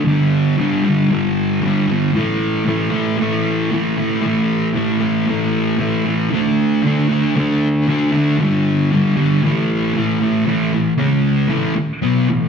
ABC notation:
X:1
M:4/4
L:1/8
Q:1/4=115
K:Amix
V:1 name="Distorted electric guitar" clef=bass
[G,,D,G,]2 [G,,D,G,] [D,G,] [G,,D,G,]2 [G,,D,G,] [D,G,] | [A,,E,A,]2 [A,,E,A,] [E,A,] [A,,E,A,]2 [A,,E,A,] [E,A,] | [A,,E,A,]2 [A,,E,A,] [E,A,] [A,,E,A,]2 [A,,E,A,] [E,A,] | [D,A,D]2 [D,A,D] [A,D] [D,A,D]2 [D,A,D] [A,D] |
[G,,D,G,]2 [G,,D,G,] [D,G,] [A,,E,A,]2 [A,,E,A,] [E,A,] | [A,,E,A,] [A,,E,] [C,^G,C]2 [A,,E,A,] z [B,,F,B,] [A,,E,] |]